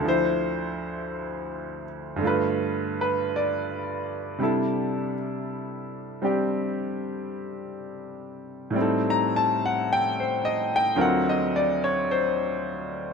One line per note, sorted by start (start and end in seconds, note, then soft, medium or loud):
0.00 2.19 D2 medium
0.00 2.17 D3 medium
0.05 2.22 F3 soft
0.05 2.23 E4 soft
0.05 1.85 C5 medium
2.16 4.38 G2 medium
2.16 4.39 D3 soft
2.22 4.40 A3 medium
2.22 4.42 F4 medium
2.27 3.00 B4 medium
3.01 3.33 B4 medium
3.36 5.12 D5 medium
4.38 8.75 C3 medium
4.38 6.20 G3 soft
4.38 6.23 D4 soft
4.43 8.77 E4 soft
4.43 8.77 A4 medium
6.22 8.72 G3 soft
6.22 8.74 C4 soft
6.22 8.76 D4 soft
6.22 8.77 G4 soft
8.70 10.93 A2 soft
8.70 10.95 G3 soft
8.76 10.96 C4 soft
8.76 10.97 D#4 soft
8.81 10.99 A4 medium
9.10 9.48 A#5 medium
9.36 9.60 A5 medium
9.66 9.84 F#5 medium
9.93 10.25 G5 medium
10.20 10.58 C5 medium
10.45 10.70 D#5 medium
10.76 10.94 G5 medium
10.96 13.13 D2 medium
10.96 13.13 D3 soft
10.96 13.13 F#3 soft
10.96 13.13 C4 medium
10.96 13.13 F4 soft
10.96 13.13 A#4 medium
11.01 11.35 F#5 medium
11.29 11.68 D#5 medium
11.56 11.81 D5 medium
11.84 12.04 C#5 medium
12.11 13.13 C5 medium